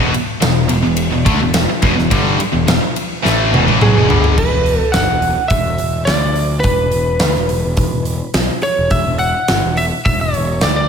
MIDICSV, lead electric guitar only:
0, 0, Header, 1, 2, 480
1, 0, Start_track
1, 0, Tempo, 567108
1, 1790, Time_signature, 4, 2, 24, 8
1, 9214, End_track
2, 0, Start_track
2, 0, Title_t, "Lead electric guitar"
2, 0, Program_c, 0, 29
2, 3235, Note_on_c, 0, 68, 84
2, 3712, Note_on_c, 0, 71, 96
2, 3723, Note_off_c, 0, 68, 0
2, 4059, Note_off_c, 0, 71, 0
2, 4059, Note_on_c, 0, 69, 96
2, 4154, Note_off_c, 0, 69, 0
2, 4164, Note_on_c, 0, 78, 90
2, 4637, Note_off_c, 0, 78, 0
2, 4640, Note_on_c, 0, 76, 91
2, 5098, Note_off_c, 0, 76, 0
2, 5122, Note_on_c, 0, 74, 87
2, 5582, Note_off_c, 0, 74, 0
2, 5586, Note_on_c, 0, 71, 75
2, 7014, Note_off_c, 0, 71, 0
2, 7305, Note_on_c, 0, 73, 88
2, 7530, Note_off_c, 0, 73, 0
2, 7542, Note_on_c, 0, 76, 101
2, 7776, Note_off_c, 0, 76, 0
2, 7779, Note_on_c, 0, 78, 107
2, 8273, Note_on_c, 0, 76, 91
2, 8281, Note_off_c, 0, 78, 0
2, 8338, Note_off_c, 0, 76, 0
2, 8506, Note_on_c, 0, 76, 97
2, 8621, Note_off_c, 0, 76, 0
2, 8644, Note_on_c, 0, 73, 94
2, 8975, Note_off_c, 0, 73, 0
2, 8999, Note_on_c, 0, 74, 95
2, 9100, Note_off_c, 0, 74, 0
2, 9110, Note_on_c, 0, 74, 105
2, 9214, Note_off_c, 0, 74, 0
2, 9214, End_track
0, 0, End_of_file